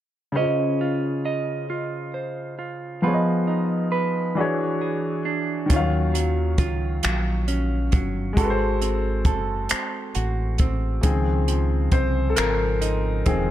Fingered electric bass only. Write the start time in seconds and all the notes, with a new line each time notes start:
5.71 D#2
6.59 C#2
7.05 A#1
7.94 G1
8.38 G#1
9.26 F#1
9.72 muted fingered electric bass stroke
10.16 A1
11.04 C#2
11.93 C2
12.39 G#1
13.27 E1